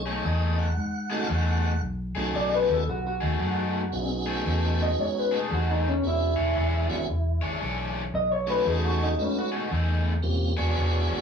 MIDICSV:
0, 0, Header, 1, 5, 480
1, 0, Start_track
1, 0, Tempo, 525855
1, 1667, Time_signature, 4, 2, 24, 8
1, 10234, End_track
2, 0, Start_track
2, 0, Title_t, "Clean electric guitar"
2, 0, Program_c, 0, 27
2, 2153, Note_on_c, 0, 74, 81
2, 2306, Note_off_c, 0, 74, 0
2, 2324, Note_on_c, 0, 71, 74
2, 2480, Note_off_c, 0, 71, 0
2, 2480, Note_on_c, 0, 69, 79
2, 2629, Note_off_c, 0, 69, 0
2, 2644, Note_on_c, 0, 66, 89
2, 2791, Note_off_c, 0, 66, 0
2, 2801, Note_on_c, 0, 66, 99
2, 3726, Note_off_c, 0, 66, 0
2, 4405, Note_on_c, 0, 75, 86
2, 4566, Note_off_c, 0, 75, 0
2, 4566, Note_on_c, 0, 73, 85
2, 4731, Note_off_c, 0, 73, 0
2, 4731, Note_on_c, 0, 71, 87
2, 4895, Note_off_c, 0, 71, 0
2, 4895, Note_on_c, 0, 68, 94
2, 5038, Note_off_c, 0, 68, 0
2, 5056, Note_on_c, 0, 66, 95
2, 5198, Note_off_c, 0, 66, 0
2, 5211, Note_on_c, 0, 63, 89
2, 5356, Note_off_c, 0, 63, 0
2, 5369, Note_on_c, 0, 61, 84
2, 5515, Note_off_c, 0, 61, 0
2, 5543, Note_on_c, 0, 64, 94
2, 6930, Note_off_c, 0, 64, 0
2, 7438, Note_on_c, 0, 75, 101
2, 7588, Note_off_c, 0, 75, 0
2, 7591, Note_on_c, 0, 73, 84
2, 7754, Note_off_c, 0, 73, 0
2, 7754, Note_on_c, 0, 71, 74
2, 7917, Note_off_c, 0, 71, 0
2, 7917, Note_on_c, 0, 68, 80
2, 8069, Note_off_c, 0, 68, 0
2, 8080, Note_on_c, 0, 66, 89
2, 8230, Note_off_c, 0, 66, 0
2, 8245, Note_on_c, 0, 63, 84
2, 8411, Note_off_c, 0, 63, 0
2, 8411, Note_on_c, 0, 61, 86
2, 8556, Note_off_c, 0, 61, 0
2, 8567, Note_on_c, 0, 66, 102
2, 8814, Note_off_c, 0, 66, 0
2, 10234, End_track
3, 0, Start_track
3, 0, Title_t, "Tonewheel organ"
3, 0, Program_c, 1, 16
3, 0, Note_on_c, 1, 73, 94
3, 221, Note_off_c, 1, 73, 0
3, 228, Note_on_c, 1, 75, 84
3, 527, Note_off_c, 1, 75, 0
3, 535, Note_on_c, 1, 78, 94
3, 1015, Note_on_c, 1, 57, 79
3, 1019, Note_on_c, 1, 61, 72
3, 1025, Note_on_c, 1, 63, 74
3, 1025, Note_on_c, 1, 66, 91
3, 1157, Note_on_c, 1, 77, 76
3, 1167, Note_off_c, 1, 78, 0
3, 1170, Note_off_c, 1, 57, 0
3, 1172, Note_off_c, 1, 61, 0
3, 1175, Note_off_c, 1, 63, 0
3, 1175, Note_off_c, 1, 66, 0
3, 1193, Note_off_c, 1, 77, 0
3, 1196, Note_on_c, 1, 78, 108
3, 1658, Note_off_c, 1, 78, 0
3, 1971, Note_on_c, 1, 61, 63
3, 1972, Note_on_c, 1, 57, 70
3, 1973, Note_on_c, 1, 63, 65
3, 1979, Note_on_c, 1, 66, 67
3, 1981, Note_on_c, 1, 68, 73
3, 2591, Note_off_c, 1, 61, 0
3, 2592, Note_off_c, 1, 57, 0
3, 2592, Note_off_c, 1, 63, 0
3, 2595, Note_off_c, 1, 66, 0
3, 2596, Note_off_c, 1, 68, 0
3, 3579, Note_on_c, 1, 59, 72
3, 3582, Note_on_c, 1, 61, 64
3, 3584, Note_on_c, 1, 66, 66
3, 3586, Note_on_c, 1, 63, 67
3, 3589, Note_on_c, 1, 68, 80
3, 4922, Note_off_c, 1, 59, 0
3, 4923, Note_off_c, 1, 61, 0
3, 4924, Note_off_c, 1, 66, 0
3, 4925, Note_off_c, 1, 63, 0
3, 4927, Note_off_c, 1, 68, 0
3, 5509, Note_on_c, 1, 59, 62
3, 5510, Note_on_c, 1, 61, 57
3, 5510, Note_on_c, 1, 62, 58
3, 5514, Note_on_c, 1, 68, 74
3, 5517, Note_on_c, 1, 66, 61
3, 5787, Note_off_c, 1, 59, 0
3, 5787, Note_off_c, 1, 61, 0
3, 5788, Note_off_c, 1, 62, 0
3, 5790, Note_off_c, 1, 68, 0
3, 5791, Note_off_c, 1, 66, 0
3, 6293, Note_on_c, 1, 59, 81
3, 6294, Note_on_c, 1, 61, 75
3, 6296, Note_on_c, 1, 62, 71
3, 6298, Note_on_c, 1, 66, 74
3, 6298, Note_on_c, 1, 68, 92
3, 6450, Note_off_c, 1, 59, 0
3, 6450, Note_off_c, 1, 61, 0
3, 6451, Note_off_c, 1, 62, 0
3, 6452, Note_off_c, 1, 66, 0
3, 6453, Note_off_c, 1, 68, 0
3, 7725, Note_on_c, 1, 57, 80
3, 7729, Note_on_c, 1, 61, 75
3, 7731, Note_on_c, 1, 63, 73
3, 7731, Note_on_c, 1, 66, 71
3, 7735, Note_on_c, 1, 68, 86
3, 8349, Note_off_c, 1, 57, 0
3, 8351, Note_off_c, 1, 61, 0
3, 8352, Note_off_c, 1, 63, 0
3, 8352, Note_off_c, 1, 66, 0
3, 8354, Note_off_c, 1, 68, 0
3, 8382, Note_on_c, 1, 57, 77
3, 8388, Note_on_c, 1, 63, 68
3, 8389, Note_on_c, 1, 61, 64
3, 8391, Note_on_c, 1, 66, 68
3, 8396, Note_on_c, 1, 71, 78
3, 8664, Note_off_c, 1, 57, 0
3, 8667, Note_off_c, 1, 61, 0
3, 8667, Note_off_c, 1, 63, 0
3, 8668, Note_off_c, 1, 66, 0
3, 8671, Note_off_c, 1, 71, 0
3, 9333, Note_on_c, 1, 58, 81
3, 9336, Note_on_c, 1, 60, 74
3, 9337, Note_on_c, 1, 61, 72
3, 9339, Note_on_c, 1, 67, 84
3, 9342, Note_on_c, 1, 65, 72
3, 9619, Note_off_c, 1, 58, 0
3, 9621, Note_off_c, 1, 60, 0
3, 9621, Note_off_c, 1, 61, 0
3, 9622, Note_off_c, 1, 67, 0
3, 9624, Note_off_c, 1, 65, 0
3, 9643, Note_on_c, 1, 73, 69
3, 9646, Note_on_c, 1, 62, 71
3, 9647, Note_on_c, 1, 59, 76
3, 9649, Note_on_c, 1, 66, 69
3, 9653, Note_on_c, 1, 68, 84
3, 10234, Note_off_c, 1, 59, 0
3, 10234, Note_off_c, 1, 62, 0
3, 10234, Note_off_c, 1, 66, 0
3, 10234, Note_off_c, 1, 68, 0
3, 10234, Note_off_c, 1, 73, 0
3, 10234, End_track
4, 0, Start_track
4, 0, Title_t, "Overdriven electric guitar"
4, 0, Program_c, 2, 29
4, 54, Note_on_c, 2, 68, 105
4, 57, Note_on_c, 2, 63, 87
4, 63, Note_on_c, 2, 57, 85
4, 68, Note_on_c, 2, 47, 75
4, 218, Note_off_c, 2, 47, 0
4, 224, Note_off_c, 2, 57, 0
4, 224, Note_off_c, 2, 63, 0
4, 226, Note_off_c, 2, 68, 0
4, 228, Note_on_c, 2, 47, 74
4, 235, Note_on_c, 2, 57, 87
4, 235, Note_on_c, 2, 63, 88
4, 239, Note_on_c, 2, 68, 94
4, 588, Note_off_c, 2, 47, 0
4, 591, Note_off_c, 2, 57, 0
4, 591, Note_off_c, 2, 63, 0
4, 593, Note_off_c, 2, 68, 0
4, 1004, Note_on_c, 2, 68, 93
4, 1008, Note_on_c, 2, 63, 93
4, 1009, Note_on_c, 2, 57, 85
4, 1012, Note_on_c, 2, 47, 82
4, 1168, Note_off_c, 2, 47, 0
4, 1168, Note_off_c, 2, 57, 0
4, 1171, Note_off_c, 2, 63, 0
4, 1174, Note_off_c, 2, 68, 0
4, 1179, Note_on_c, 2, 47, 78
4, 1179, Note_on_c, 2, 57, 73
4, 1182, Note_on_c, 2, 63, 75
4, 1185, Note_on_c, 2, 68, 80
4, 1543, Note_off_c, 2, 47, 0
4, 1543, Note_off_c, 2, 57, 0
4, 1545, Note_off_c, 2, 63, 0
4, 1546, Note_off_c, 2, 68, 0
4, 1964, Note_on_c, 2, 68, 96
4, 1970, Note_on_c, 2, 63, 89
4, 1973, Note_on_c, 2, 57, 84
4, 1977, Note_on_c, 2, 47, 68
4, 2117, Note_off_c, 2, 47, 0
4, 2124, Note_off_c, 2, 57, 0
4, 2124, Note_off_c, 2, 63, 0
4, 2128, Note_on_c, 2, 47, 70
4, 2131, Note_off_c, 2, 68, 0
4, 2135, Note_on_c, 2, 57, 70
4, 2135, Note_on_c, 2, 63, 76
4, 2142, Note_on_c, 2, 68, 81
4, 2498, Note_off_c, 2, 47, 0
4, 2502, Note_off_c, 2, 57, 0
4, 2502, Note_off_c, 2, 63, 0
4, 2505, Note_off_c, 2, 68, 0
4, 2928, Note_on_c, 2, 68, 94
4, 2932, Note_on_c, 2, 63, 85
4, 2936, Note_on_c, 2, 57, 77
4, 2937, Note_on_c, 2, 47, 68
4, 3091, Note_off_c, 2, 47, 0
4, 3097, Note_off_c, 2, 57, 0
4, 3098, Note_off_c, 2, 63, 0
4, 3102, Note_on_c, 2, 47, 65
4, 3104, Note_off_c, 2, 68, 0
4, 3108, Note_on_c, 2, 57, 81
4, 3109, Note_on_c, 2, 63, 74
4, 3115, Note_on_c, 2, 68, 78
4, 3465, Note_off_c, 2, 47, 0
4, 3468, Note_off_c, 2, 57, 0
4, 3469, Note_off_c, 2, 63, 0
4, 3472, Note_off_c, 2, 68, 0
4, 3891, Note_on_c, 2, 68, 93
4, 3894, Note_on_c, 2, 57, 86
4, 3894, Note_on_c, 2, 63, 92
4, 3900, Note_on_c, 2, 47, 79
4, 4053, Note_off_c, 2, 47, 0
4, 4058, Note_off_c, 2, 63, 0
4, 4059, Note_off_c, 2, 57, 0
4, 4062, Note_off_c, 2, 68, 0
4, 4064, Note_on_c, 2, 47, 75
4, 4069, Note_on_c, 2, 63, 80
4, 4070, Note_on_c, 2, 57, 80
4, 4073, Note_on_c, 2, 68, 92
4, 4427, Note_off_c, 2, 47, 0
4, 4429, Note_off_c, 2, 63, 0
4, 4430, Note_off_c, 2, 57, 0
4, 4431, Note_off_c, 2, 68, 0
4, 4853, Note_on_c, 2, 68, 88
4, 4854, Note_on_c, 2, 63, 89
4, 4859, Note_on_c, 2, 57, 83
4, 4862, Note_on_c, 2, 47, 75
4, 5010, Note_off_c, 2, 47, 0
4, 5019, Note_off_c, 2, 57, 0
4, 5021, Note_on_c, 2, 47, 70
4, 5022, Note_off_c, 2, 63, 0
4, 5025, Note_off_c, 2, 68, 0
4, 5030, Note_on_c, 2, 57, 74
4, 5033, Note_on_c, 2, 63, 78
4, 5036, Note_on_c, 2, 68, 85
4, 5385, Note_off_c, 2, 47, 0
4, 5390, Note_off_c, 2, 57, 0
4, 5391, Note_off_c, 2, 63, 0
4, 5393, Note_off_c, 2, 68, 0
4, 5809, Note_on_c, 2, 68, 95
4, 5809, Note_on_c, 2, 73, 101
4, 5813, Note_on_c, 2, 62, 83
4, 5818, Note_on_c, 2, 52, 71
4, 5967, Note_off_c, 2, 52, 0
4, 5970, Note_off_c, 2, 62, 0
4, 5972, Note_off_c, 2, 68, 0
4, 5976, Note_off_c, 2, 73, 0
4, 5977, Note_on_c, 2, 52, 69
4, 5981, Note_on_c, 2, 62, 72
4, 5983, Note_on_c, 2, 68, 83
4, 5987, Note_on_c, 2, 73, 89
4, 6344, Note_off_c, 2, 52, 0
4, 6345, Note_off_c, 2, 62, 0
4, 6346, Note_off_c, 2, 68, 0
4, 6348, Note_off_c, 2, 73, 0
4, 6768, Note_on_c, 2, 73, 93
4, 6775, Note_on_c, 2, 62, 76
4, 6777, Note_on_c, 2, 68, 79
4, 6779, Note_on_c, 2, 52, 69
4, 6928, Note_off_c, 2, 52, 0
4, 6934, Note_off_c, 2, 62, 0
4, 6938, Note_off_c, 2, 73, 0
4, 6939, Note_off_c, 2, 68, 0
4, 6939, Note_on_c, 2, 52, 74
4, 6945, Note_on_c, 2, 62, 75
4, 6949, Note_on_c, 2, 73, 84
4, 6950, Note_on_c, 2, 68, 76
4, 7305, Note_off_c, 2, 52, 0
4, 7307, Note_off_c, 2, 62, 0
4, 7310, Note_off_c, 2, 68, 0
4, 7310, Note_off_c, 2, 73, 0
4, 7734, Note_on_c, 2, 68, 93
4, 7736, Note_on_c, 2, 63, 84
4, 7740, Note_on_c, 2, 57, 83
4, 7745, Note_on_c, 2, 47, 70
4, 7891, Note_off_c, 2, 47, 0
4, 7892, Note_off_c, 2, 57, 0
4, 7897, Note_off_c, 2, 63, 0
4, 7900, Note_off_c, 2, 68, 0
4, 7902, Note_on_c, 2, 47, 73
4, 7902, Note_on_c, 2, 57, 81
4, 7908, Note_on_c, 2, 63, 80
4, 7911, Note_on_c, 2, 68, 81
4, 8266, Note_off_c, 2, 47, 0
4, 8266, Note_off_c, 2, 57, 0
4, 8269, Note_off_c, 2, 63, 0
4, 8271, Note_off_c, 2, 68, 0
4, 8690, Note_on_c, 2, 68, 84
4, 8694, Note_on_c, 2, 63, 93
4, 8699, Note_on_c, 2, 57, 77
4, 8701, Note_on_c, 2, 47, 78
4, 8856, Note_off_c, 2, 47, 0
4, 8859, Note_off_c, 2, 57, 0
4, 8862, Note_off_c, 2, 63, 0
4, 8866, Note_off_c, 2, 68, 0
4, 8867, Note_on_c, 2, 47, 72
4, 8870, Note_on_c, 2, 57, 73
4, 8873, Note_on_c, 2, 63, 77
4, 8876, Note_on_c, 2, 68, 80
4, 9229, Note_off_c, 2, 47, 0
4, 9230, Note_off_c, 2, 57, 0
4, 9231, Note_off_c, 2, 63, 0
4, 9233, Note_off_c, 2, 68, 0
4, 9648, Note_on_c, 2, 68, 90
4, 9648, Note_on_c, 2, 73, 96
4, 9654, Note_on_c, 2, 52, 74
4, 9657, Note_on_c, 2, 62, 74
4, 9812, Note_off_c, 2, 52, 0
4, 9815, Note_off_c, 2, 62, 0
4, 9818, Note_off_c, 2, 68, 0
4, 9822, Note_off_c, 2, 73, 0
4, 9823, Note_on_c, 2, 52, 83
4, 9826, Note_on_c, 2, 62, 73
4, 9828, Note_on_c, 2, 68, 76
4, 9833, Note_on_c, 2, 73, 83
4, 10187, Note_off_c, 2, 52, 0
4, 10188, Note_off_c, 2, 62, 0
4, 10189, Note_off_c, 2, 68, 0
4, 10191, Note_off_c, 2, 73, 0
4, 10234, End_track
5, 0, Start_track
5, 0, Title_t, "Fingered electric bass"
5, 0, Program_c, 3, 33
5, 0, Note_on_c, 3, 35, 96
5, 180, Note_off_c, 3, 35, 0
5, 226, Note_on_c, 3, 40, 100
5, 658, Note_off_c, 3, 40, 0
5, 704, Note_on_c, 3, 44, 94
5, 1137, Note_off_c, 3, 44, 0
5, 1184, Note_on_c, 3, 40, 98
5, 1617, Note_off_c, 3, 40, 0
5, 1659, Note_on_c, 3, 35, 88
5, 1940, Note_off_c, 3, 35, 0
5, 1974, Note_on_c, 3, 35, 80
5, 2129, Note_off_c, 3, 35, 0
5, 2145, Note_on_c, 3, 35, 95
5, 2423, Note_off_c, 3, 35, 0
5, 2452, Note_on_c, 3, 39, 86
5, 2608, Note_off_c, 3, 39, 0
5, 2628, Note_on_c, 3, 35, 83
5, 2905, Note_off_c, 3, 35, 0
5, 2937, Note_on_c, 3, 39, 87
5, 3091, Note_off_c, 3, 39, 0
5, 3103, Note_on_c, 3, 42, 94
5, 3537, Note_off_c, 3, 42, 0
5, 3587, Note_on_c, 3, 35, 88
5, 4019, Note_off_c, 3, 35, 0
5, 4069, Note_on_c, 3, 40, 99
5, 4500, Note_off_c, 3, 40, 0
5, 4554, Note_on_c, 3, 44, 87
5, 4983, Note_off_c, 3, 44, 0
5, 5029, Note_on_c, 3, 40, 92
5, 5461, Note_off_c, 3, 40, 0
5, 5503, Note_on_c, 3, 28, 93
5, 5783, Note_off_c, 3, 28, 0
5, 5822, Note_on_c, 3, 28, 85
5, 5975, Note_off_c, 3, 28, 0
5, 5991, Note_on_c, 3, 28, 100
5, 6268, Note_off_c, 3, 28, 0
5, 6306, Note_on_c, 3, 32, 94
5, 6457, Note_off_c, 3, 32, 0
5, 6474, Note_on_c, 3, 28, 90
5, 6750, Note_off_c, 3, 28, 0
5, 6788, Note_on_c, 3, 32, 88
5, 6938, Note_off_c, 3, 32, 0
5, 6954, Note_on_c, 3, 35, 97
5, 7384, Note_off_c, 3, 35, 0
5, 7428, Note_on_c, 3, 35, 94
5, 7860, Note_off_c, 3, 35, 0
5, 7902, Note_on_c, 3, 40, 101
5, 8337, Note_off_c, 3, 40, 0
5, 8385, Note_on_c, 3, 44, 87
5, 8819, Note_off_c, 3, 44, 0
5, 8865, Note_on_c, 3, 40, 93
5, 9299, Note_off_c, 3, 40, 0
5, 9343, Note_on_c, 3, 28, 97
5, 9624, Note_off_c, 3, 28, 0
5, 9658, Note_on_c, 3, 28, 85
5, 9812, Note_off_c, 3, 28, 0
5, 9835, Note_on_c, 3, 28, 93
5, 10110, Note_off_c, 3, 28, 0
5, 10147, Note_on_c, 3, 32, 90
5, 10234, Note_off_c, 3, 32, 0
5, 10234, End_track
0, 0, End_of_file